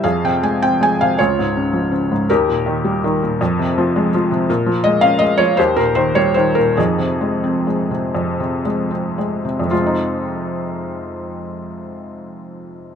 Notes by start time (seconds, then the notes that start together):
0.04 F2 G#4 F5
0.24 C3 G5
0.43 G#3 G#5
0.62 C4 G5
0.81 G#3 G#5
1.01 C3 F5
1.19 C#2 F4 C#5
1.39 G#2
1.57 C#3
1.73 F3
1.92 C#3
2.12 G#2
2.30 D#2 G4 A#4
2.49 A#2
2.66 D#3
2.84 G3
3.04 D#3
3.23 A#2
3.41 F2
3.59 C3
3.78 F3
3.96 G#3
4.14 F3
4.31 C3
4.50 A#2
4.66 F3
4.84 G#3 D#5
5.01 C#4 F5
5.19 G#3 D#5
5.38 F3 C#5
5.57 D#2 G4 C5
5.76 A#2 A#4
5.95 D#3 C5
6.15 G3 C#5
6.34 D#3 C5
6.55 A#2 A#4
6.77 F2 D#4 G#4
6.98 C3
7.21 G#3
7.44 C4
7.67 G#3
7.91 C3
8.15 F2
8.40 C3
8.65 G#3
8.91 C4
9.18 G#3
9.45 C3
9.59 F2
9.66 C3
9.71 G#3 F4
9.79 C4
9.86 D#4